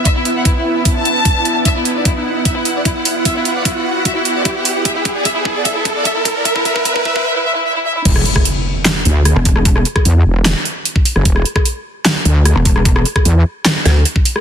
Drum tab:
CC |----------------|----------------|----------------|----------------|
HH |x-x-x---x-x-x-x-|x-x-x---x-x-x-o-|x-x-x---x-x-x-o-|x-x-x---x-x-x-o-|
CP |----------------|----------------|----------------|----------------|
SD |----------------|----------------|----------------|----------------|
BD |o---o---o---o---|o---o---o---o---|o---o---o---o---|o-o-o-o-o-o-o-o-|

CC |----------------|x---------------|----------------|----------------|
HH |x-x-x-----------|x-x-x---x-x-x-o-|x-x-x---x-x-x-o-|x-x-x---x-x-x-o-|
CP |----------------|--------x-------|--------x-------|--------x-------|
SD |----------------|-r-r----o---r--r|-r-r----o------r|-r-r----o---r--r|
BD |oooooooo--------|o--o----------o-|o--o---------o--|o--o----------o-|

CC |----------------|
HH |x-x-x---x-x-x-o-|
CP |--------x-------|
SD |-r-r----o-o----r|
BD |o--o---------o--|